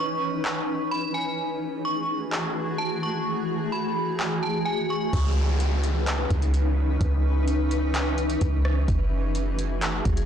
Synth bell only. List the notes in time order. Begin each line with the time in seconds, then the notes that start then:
Already playing: C#6
0.91 B5
1.14 G#5
1.85 C#6
2.78 A5
3.03 C#6
3.72 B5
4.43 A5
4.65 G#5
4.90 C#6